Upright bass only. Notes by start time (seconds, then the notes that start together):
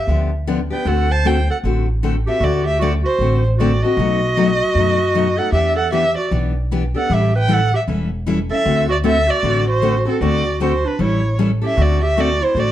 0.07 D2
0.85 D2
1.64 A1
2.40 D2
3.19 A1
3.97 B1
4.75 F#2
5.52 E2
6.31 B1
7.10 A1
7.88 E1
8.66 D2
9.43 A1
10.21 D2
10.99 A1
11.77 D2
12.55 A1